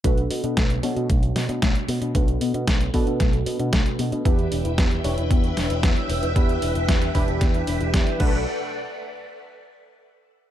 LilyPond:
<<
  \new Staff \with { instrumentName = "String machine" } { \time 4/4 \key b \minor \tempo 4 = 114 r1 | r1 | <b' e'' g''>1~ | <b' e'' g''>2.~ <b' e'' g''>8 <a' b' d'' fis'' b''>8 |
r1 | }
  \new Staff \with { instrumentName = "Analog polysynth" } { \time 4/4 \key b \minor <b, d' fis' a' b'>4. <b, d' fis' a' cis''>2~ <b, d' fis' a' cis''>8 | <b, d' fis' a' b'>4. <b, d' fis' a' b'>2~ <b, d' fis' a' b'>8 | <e d' e' g' b'>4. <e d' e' g' cis''>2~ <e d' e' g' cis''>8 | <e d' e' g' b'>4. <e d' e' g' b'>2 <d' fis' a' b'>8 |
r1 | }
  \new Staff \with { instrumentName = "Synth arpeggio sound" } { \time 4/4 \key b \minor a16 r16 b16 d'16 a16 r16 b16 d'16 a16 r16 b16 d'16 a16 r16 b16 d'16 | a16 r16 b16 d'16 a16 r16 b16 d'16 a16 r16 b16 d'16 a16 r16 b16 d'16 | b16 r16 d'16 e'16 b16 r16 d'16 e'16 b16 r16 d'16 e'16 b16 r16 d'16 e'16 | b16 r16 d'16 e'16 b16 r16 d'16 e'16 b16 r16 d'16 e'16 b16 r16 a8 |
r1 | }
  \new Staff \with { instrumentName = "Picked electric bass" } { \clef bass \time 4/4 \key b \minor b,,8 b,16 b,16 b,,8 b,16 b,16 b,,8 b,16 b,16 b,,16 r16 b,16 b,16 | b,,8 b,16 b,16 b,,8 b,16 b,16 b,,8 b,16 b,16 b,,16 r16 b,16 b,16 | e,8 e,,16 e,,16 e,8 e,,16 e,,16 e,8 e,,16 e,,16 e,16 r16 e,,16 e,,16 | e,8 e,,16 e,,16 e,8 e,,16 e,,16 e,8 e,,16 e,,16 e,16 r16 b,,8 |
r1 | }
  \new DrumStaff \with { instrumentName = "Drums" } \drummode { \time 4/4 <hh bd>16 hh16 hho16 hh16 <hh bd sn>16 hh16 hho16 hh16 <hh bd>16 hh16 <hho sn>16 hh16 <hh bd sn>16 hh16 hho16 hh16 | <hh bd>16 hh16 hho16 hh16 <hh bd sn>16 hh16 <hho bd>16 hh16 <hh bd sn>16 hh16 hho16 hh16 <hh bd sn>16 hh16 hho16 hh16 | <hh bd>16 hh16 hho16 hh16 <hh bd sn>16 hh16 hho16 hh16 <hh bd>16 hh16 <hho sn>16 hh16 <hh bd sn>16 hh16 hho16 hh16 | <hh bd>16 hh16 hho16 hh16 <hh bd sn>16 hh16 <hho bd>16 hh16 <hh bd sn>16 hh16 hho16 hh16 <hh bd sn>16 hh16 <cymc bd>8 |
r4 r4 r4 r4 | }
>>